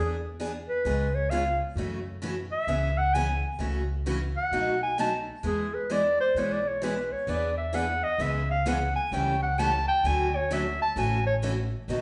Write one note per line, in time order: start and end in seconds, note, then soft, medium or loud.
0.00 0.66 E2 medium
0.00 0.15 E3 medium
0.00 0.15 B3 medium
0.00 0.16 D4 medium
0.00 0.11 G#4 medium
0.00 0.16 G#4 medium
0.40 0.51 E3 medium
0.40 0.51 B3 medium
0.40 0.51 D4 medium
0.40 0.51 G#4 loud
0.69 1.16 B4 medium
0.85 1.58 C#2 medium
0.85 1.06 C#3 medium
0.85 1.07 G#3 medium
0.85 1.07 B3 medium
0.85 1.07 F4 medium
0.85 1.07 G#4 medium
1.15 1.32 C#5 medium
1.30 1.42 C#3 medium
1.30 1.43 G#3 medium
1.30 1.43 B3 medium
1.30 1.43 F4 loud
1.30 1.43 G#4 loud
1.30 1.59 F5 medium
1.76 2.49 F#2 medium
1.76 1.98 C#3 medium
1.76 1.99 E3 medium
1.76 1.99 A3 medium
1.76 1.99 C#4 medium
1.76 1.99 F#4 medium
2.22 2.33 C#3 medium
2.22 2.34 E3 medium
2.22 2.34 A3 medium
2.22 2.34 C#4 medium
2.22 2.34 F#4 medium
2.52 2.99 E5 loud
2.67 3.41 C#2 medium
2.67 2.89 C#3 medium
2.67 2.90 E3 medium
2.67 2.90 B3 medium
2.67 2.90 C#4 medium
2.67 2.90 G#4 medium
2.98 3.16 F#5 loud
3.14 3.26 C#3 medium
3.14 3.26 E3 medium
3.14 3.26 B3 medium
3.14 3.26 C#4 loud
3.14 3.26 G#4 loud
3.14 3.43 G#5 medium
3.59 4.33 C#2 medium
3.59 3.81 C#3 medium
3.59 3.81 E3 medium
3.59 3.81 A3 medium
3.59 3.82 C#4 medium
3.59 3.82 F#4 medium
4.06 4.17 C#3 medium
4.06 4.18 E3 medium
4.06 4.18 A3 medium
4.06 4.18 C#4 loud
4.06 4.18 F#4 loud
4.37 4.79 F#5 loud
4.51 5.25 B1 medium
4.51 4.74 B2 medium
4.51 4.74 F#3 medium
4.51 4.74 A3 medium
4.51 4.74 D#4 medium
4.51 4.74 F#4 medium
4.83 4.98 G#5 loud
4.98 5.09 B2 medium
4.98 5.10 F#3 loud
4.98 5.10 A3 loud
4.98 5.10 D#4 loud
4.98 5.10 F#4 loud
4.98 5.17 A5 medium
5.43 6.17 E2 medium
5.43 5.65 E3 medium
5.43 5.65 G#3 medium
5.43 5.65 B3 medium
5.43 5.66 E4 medium
5.43 5.66 G#4 medium
5.43 5.76 G#4 medium
5.74 5.93 B4 medium
5.90 6.01 E3 medium
5.90 6.01 G#3 medium
5.90 6.02 B3 medium
5.90 6.02 E4 loud
5.90 6.02 G#4 medium
5.90 6.20 D5 loud
6.21 6.39 C5 loud
6.35 7.09 B1 medium
6.35 6.57 E3 medium
6.35 6.58 G#3 medium
6.35 6.58 B3 medium
6.35 6.58 E4 medium
6.35 6.58 G#4 medium
6.35 6.54 C#5 medium
6.53 6.70 D5 medium
6.68 6.85 C#5 medium
6.82 6.93 E3 medium
6.82 6.94 G#3 medium
6.82 6.94 B3 medium
6.82 6.94 E4 loud
6.82 6.94 G#4 loud
6.82 7.14 B4 medium
7.12 7.32 C#5 medium
7.27 8.01 E2 loud
7.27 7.49 E3 medium
7.27 7.49 B3 medium
7.27 7.50 D4 medium
7.27 7.50 G#4 medium
7.27 7.50 B4 medium
7.27 7.57 D5 medium
7.58 7.76 E5 medium
7.73 7.85 E3 medium
7.73 7.85 B3 medium
7.73 7.85 D4 medium
7.73 7.85 G#4 medium
7.73 7.85 B4 loud
7.73 8.05 F#5 loud
8.04 8.23 D#5 loud
8.18 8.93 C#2 medium
8.18 8.41 C#3 medium
8.18 8.41 E3 medium
8.18 8.41 G#3 medium
8.18 8.42 B3 medium
8.18 8.42 C#4 medium
8.18 8.41 E4 medium
8.18 8.42 G#4 medium
8.18 8.50 E5 medium
8.51 8.69 F5 loud
8.66 8.77 C#3 medium
8.66 8.77 E3 loud
8.66 8.77 G#3 medium
8.66 8.78 B3 loud
8.66 8.78 C#4 loud
8.66 8.77 E4 medium
8.66 8.78 G#4 loud
8.66 8.95 F#5 medium
8.96 9.15 G#5 medium
9.12 9.85 C#2 medium
9.12 9.34 C#3 medium
9.12 9.34 E3 medium
9.12 9.33 G3 medium
9.12 9.34 A3 medium
9.12 9.34 C#4 medium
9.12 9.33 E4 medium
9.12 9.35 G4 medium
9.12 9.34 A4 medium
9.12 9.33 C#5 medium
9.12 9.42 G5 medium
9.43 9.61 F#5 loud
9.58 9.70 C#3 medium
9.58 9.70 E3 loud
9.58 9.69 G3 medium
9.58 9.70 A3 loud
9.58 9.70 C#4 loud
9.58 9.70 E4 medium
9.58 9.70 G4 loud
9.58 9.70 A4 medium
9.58 9.70 C#5 medium
9.58 9.88 A5 loud
9.88 10.08 G5 loud
10.04 10.78 D2 loud
10.04 10.26 D3 medium
10.04 10.26 F#3 medium
10.04 10.26 A3 medium
10.04 10.26 C#4 medium
10.04 10.26 F#4 medium
10.04 10.26 A4 medium
10.04 10.37 G#5 loud
10.36 10.54 C#5 medium
10.51 10.62 D3 loud
10.51 10.62 F#3 loud
10.51 10.62 A3 loud
10.51 10.62 C#4 loud
10.51 10.63 F#4 loud
10.51 10.62 A4 loud
10.51 10.80 E5 medium
10.82 11.00 A5 loud
10.96 11.70 A1 loud
10.96 11.18 C#3 medium
10.96 11.18 E3 medium
10.96 11.18 A3 medium
10.96 11.18 C#4 medium
10.96 11.18 F#4 medium
10.96 11.18 A4 medium
10.96 11.26 G#5 medium
11.26 11.36 C#5 loud
11.43 11.54 C#3 medium
11.43 11.54 E3 loud
11.43 11.54 A3 loud
11.43 11.54 C#4 loud
11.43 11.54 F#4 loud
11.43 11.54 A4 medium
11.88 12.01 B1 loud
11.88 12.01 B2 medium
11.88 12.01 D#3 medium
11.88 12.01 F#3 medium
11.88 12.01 A3 medium
11.88 12.01 B3 medium
11.88 12.01 D#4 medium
11.88 12.01 F#4 medium
11.88 12.01 A4 medium